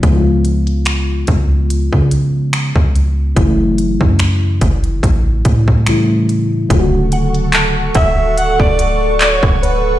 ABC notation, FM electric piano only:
X:1
M:4/4
L:1/8
Q:"Swing 16ths" 1/4=72
K:D
V:1 name="FM electric piano" clef=bass
[C,^E,^G,B,=E^E]8 | [C,E,F,G,A,E]6 [C,E,G,A,E]2 | [C,D,F,A,=F^F]8 |]